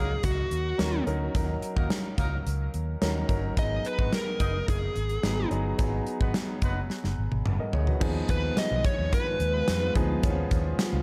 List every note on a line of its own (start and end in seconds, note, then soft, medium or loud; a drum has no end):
0.00 0.17 C#2 medium
0.00 0.14 F#3 medium
0.00 0.78 F#3 medium
0.00 0.14 A#3 medium
0.00 0.79 C#4 medium
0.00 0.14 D#4 medium
0.00 0.79 D#4 medium
0.00 0.24 G#4 medium
0.00 0.14 A#4 medium
0.00 0.79 A#4 medium
0.23 0.45 C#2 medium
0.23 1.04 F#4 medium
0.23 kick medium
0.23 closed hi-hat medium
0.51 0.72 D#2 medium
0.51 closed hi-hat medium
0.78 1.00 D#2 medium
0.78 1.02 F#3 medium
0.78 1.03 C#4 medium
0.78 1.03 D#4 medium
0.78 1.03 A#4 medium
0.78 snare medium
0.78 closed hi-hat medium
1.06 1.28 D2 medium
1.06 1.30 F#3 medium
1.06 1.31 C#4 medium
1.06 1.31 D#4 medium
1.06 1.31 A#4 medium
1.06 closed hi-hat medium
1.35 1.56 D#2 medium
1.35 2.29 F#3 medium
1.35 2.30 C#4 medium
1.35 2.30 D#4 medium
1.35 2.30 A#4 medium
1.35 kick loud
1.35 closed hi-hat medium
1.62 closed hi-hat medium
1.76 1.87 D#2 medium
1.76 1.88 F#3 medium
1.76 1.88 A#3 medium
1.76 1.88 D#4 medium
1.76 1.88 A#4 medium
1.76 kick medium
1.90 snare loud
1.90 closed hi-hat medium
2.18 2.39 C#2 medium
2.18 2.36 F#3 medium
2.18 2.36 A#3 medium
2.18 2.36 D#4 medium
2.18 2.36 A#4 medium
2.18 kick medium
2.18 closed hi-hat medium
2.46 2.67 C#2 medium
2.46 closed hi-hat medium
2.74 2.95 D#2 medium
2.74 closed hi-hat medium
3.02 3.23 D#2 medium
3.02 3.25 F#3 medium
3.02 3.25 C#4 medium
3.02 3.26 D#4 medium
3.02 3.26 A#4 medium
3.02 snare medium
3.02 closed hi-hat medium
3.29 3.50 G1 medium
3.29 3.53 F#3 medium
3.29 3.53 C#4 medium
3.29 3.53 D#4 medium
3.29 3.53 A#4 medium
3.29 kick medium
3.29 closed hi-hat medium
3.57 3.78 G#1 medium
3.57 4.51 F#3 medium
3.57 4.52 B3 medium
3.57 4.52 D#4 medium
3.57 4.52 G#4 medium
3.57 3.87 D#5 loud
3.57 kick loud
3.57 closed hi-hat medium
3.85 4.14 B4 medium
3.85 closed hi-hat medium
3.99 4.09 G#1 loud
3.99 4.11 G#3 medium
3.99 4.11 B3 medium
3.99 4.11 F#4 medium
3.99 4.11 B4 medium
3.99 kick medium
4.13 4.65 A#4 medium
4.13 snare loud
4.13 closed hi-hat medium
4.40 4.61 F#1 medium
4.40 4.58 B3 medium
4.40 4.58 D#4 medium
4.40 4.58 G#4 medium
4.40 4.58 D#5 medium
4.40 kick medium
4.40 closed hi-hat medium
4.68 4.89 F#1 medium
4.68 5.48 G#4 medium
4.68 kick medium
4.68 closed hi-hat medium
4.96 5.17 G#1 medium
4.96 closed hi-hat medium
5.09 closed hi-hat soft
5.23 5.44 G#1 medium
5.23 5.47 F#3 medium
5.23 5.47 B3 medium
5.23 5.47 D#4 medium
5.23 5.48 G#4 medium
5.23 snare loud
5.23 closed hi-hat medium
5.51 5.72 G1 medium
5.51 5.75 F#3 medium
5.51 5.75 B3 medium
5.51 5.75 D#4 medium
5.51 5.75 G#4 medium
5.51 closed hi-hat medium
5.78 6.00 G#1 medium
5.78 6.73 F#3 medium
5.78 6.74 B3 medium
5.78 6.74 D#4 medium
5.78 6.74 G#4 medium
5.78 kick loud
5.78 closed hi-hat medium
6.07 closed hi-hat medium
6.21 6.31 G#1 medium
6.21 6.33 G#3 medium
6.21 6.33 B3 medium
6.21 6.33 F#4 medium
6.21 6.33 B4 medium
6.21 kick medium
6.34 snare loud
6.34 closed hi-hat medium
6.62 6.83 F#1 medium
6.62 6.80 G#3 medium
6.62 6.80 B3 medium
6.62 6.80 F#4 medium
6.62 6.80 B4 medium
6.62 kick medium
6.62 closed hi-hat medium
6.90 snare medium
7.04 7.15 F#1 medium
7.04 snare soft
7.18 7.29 G#1 medium
7.32 7.43 G#1 medium
7.32 high tom medium
7.46 7.56 F#1 medium
7.46 mid tom medium
7.59 7.73 A#4 soft
7.59 7.73 D#5 medium
7.73 7.95 D2 medium
7.73 7.87 G#4 medium
7.73 7.87 C#5 medium
7.73 floor tom medium
7.87 8.14 F#4 medium
7.87 8.14 B4 medium
7.87 floor tom medium
8.00 8.22 D#2 loud
8.00 10.22 D#3 medium
8.00 8.96 F3 medium
8.00 11.03 F3 medium
8.00 10.22 G#3 medium
8.00 8.96 B3 medium
8.00 10.22 B3 medium
8.00 8.96 D#4 medium
8.00 11.03 F4 medium
8.00 8.96 G#4 medium
8.00 kick loud
8.00 crash medium
8.29 8.50 D#2 loud
8.29 8.58 B4 medium
8.29 kick medium
8.29 closed hi-hat medium
8.57 8.85 D#5 loud
8.57 snare loud
8.57 closed hi-hat medium
8.57 tambourine medium
8.71 8.81 B1 medium
8.85 9.11 C#5 medium
8.85 kick medium
8.85 closed hi-hat medium
8.99 9.09 D#2 medium
9.13 9.93 B4 medium
9.13 kick medium
9.13 closed hi-hat medium
9.40 9.61 D#2 medium
9.40 closed hi-hat medium
9.68 9.89 F2 medium
9.68 snare loud
9.68 closed hi-hat medium
9.68 tambourine medium
9.95 10.16 D2 medium
9.95 10.19 F3 medium
9.95 10.19 B3 medium
9.95 10.19 D#4 medium
9.95 10.20 G#4 medium
9.95 kick medium
9.95 closed hi-hat medium
10.23 10.44 D#2 loud
10.23 11.03 C#3 medium
10.23 10.30 D#3 medium
10.23 11.03 G#3 medium
10.23 11.03 B3 medium
10.23 11.03 C#4 medium
10.23 11.03 G#4 medium
10.23 kick loud
10.23 closed hi-hat medium
10.30 11.03 F3 medium
10.51 10.72 D#2 loud
10.51 kick medium
10.51 closed hi-hat medium
10.79 snare loud
10.79 closed hi-hat medium
10.79 tambourine medium
10.93 11.03 C#2 medium